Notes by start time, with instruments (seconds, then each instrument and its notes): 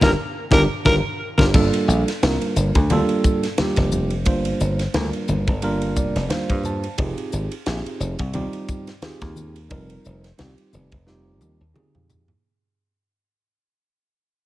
0.01 slap bass G1, tine electric piano D4 F4 G4, alto saxophone A#4, kick, snare, high conga
0.51 slap bass G1, tine electric piano D4 F4 G4, alto saxophone A#4, kick, snare, high conga
0.85 slap bass G1, tine electric piano D4 F4 G4, alto saxophone A#4, kick, snare, high conga
1.37 slap bass G1, tine electric piano D4 F4 G4, alto saxophone A#4, kick, snare, high conga
1.53 slap bass G1, tine electric piano G3 A#3 D4 F4 A4, kick, crash, muted conga
1.73 ride
1.88 slap bass A#1, hi-hat pedal
2.08 snare, ride
2.22 slap bass C2, tine electric piano G3 A#3 D4 F4 A#4, snare, ride
2.41 ride
2.56 slap bass G1, hi-hat pedal, muted conga
2.75 slap bass D2, kick, ride
2.90 tine electric piano G3 A#3 D4 F4 A4, ride, muted conga, high conga
3.09 ride
3.24 kick, hi-hat pedal, muted conga
3.43 snare, ride
3.58 tine electric piano G3 A#3 D4 F4 G4, snare, ride, high conga
3.76 slap bass F1, kick, snare, ride
3.92 hi-hat pedal, high conga
4.10 ride
4.25 slap bass G1, tine electric piano G3 A#3 D4 F4 C5, kick, ride, muted conga
4.45 ride
4.60 slap bass G1, hi-hat pedal
4.79 snare, ride
4.94 slap bass D2, tine electric piano G3 A#3 D4 F4 A#4, snare, ride, high conga
5.13 ride
5.28 slap bass G1, hi-hat pedal, muted conga, high conga
5.47 slap bass G1, kick, ride
5.62 tine electric piano G3 A#3 D4 F4 A#4, ride, muted conga
5.81 ride
5.96 slap bass F1, tine electric piano D5, kick, hi-hat pedal, muted conga
6.15 slap bass F1, snare, ride
6.29 tine electric piano G3 A#3 D4 F4 C5 F5, snare, ride, high conga
6.50 slap bass G2, kick, ride
6.63 tine electric piano A5, hi-hat pedal, low conga
6.84 ride
6.98 slap bass F1, tine electric piano C4 D#4 F4 G4 G#4, kick, ride, muted conga
7.18 ride
7.32 slap bass G#1, hi-hat pedal
7.51 ride
7.66 slap bass A#1, tine electric piano C4 D#4 F4 G4 G#4, snare, ride
7.86 ride
8.00 slap bass F1, hi-hat pedal, muted conga
8.19 slap bass C2, kick, ride
8.33 tine electric piano G3 C4 D#4 F4 G4, ride, muted conga, high conga
8.53 ride
8.68 kick, hi-hat pedal, muted conga
8.87 snare, ride
9.02 tine electric piano C4 D#4 F4 G4 G#4, snare, ride, high conga
9.21 slap bass D#2, kick, snare, ride
9.36 hi-hat pedal, high conga
9.56 ride
9.69 slap bass F1, tine electric piano G3 C4 D#4 F4 A#4, kick, ride, muted conga
9.90 ride
10.05 slap bass F1, hi-hat pedal
10.24 snare, ride
10.38 slap bass C2, tine electric piano G3 C4 D#4 F4 G4, snare, ride, high conga
10.58 ride
10.73 slap bass F1, hi-hat pedal, muted conga, high conga
10.92 slap bass F1, kick, ride
11.07 tine electric piano G3 C4 D#4 F4 G4, snare, muted conga
11.41 slap bass D#2, hi-hat pedal, high tom, muted conga
11.60 slap bass D#2
11.74 tine electric piano C4 D#4 F4 G4 G#4, mid tom, high conga
11.95 slap bass F2, mid tom
12.10 floor tom, hi-hat pedal, low conga
12.28 floor tom